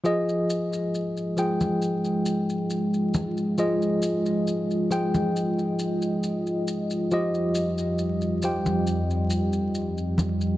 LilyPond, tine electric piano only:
\new Staff \with { instrumentName = "Tine electric piano" } { \time 4/4 \key f \minor \tempo 4 = 68 <f f' aes' ees''>4. <f f' aes' g''>2~ <f f' aes' g''>8 | <f f' aes' ees''>4. <f f' aes' g''>2~ <f f' aes' g''>8 | <f f' g' ees''>4. <f f' g' g''>2~ <f f' g' g''>8 | }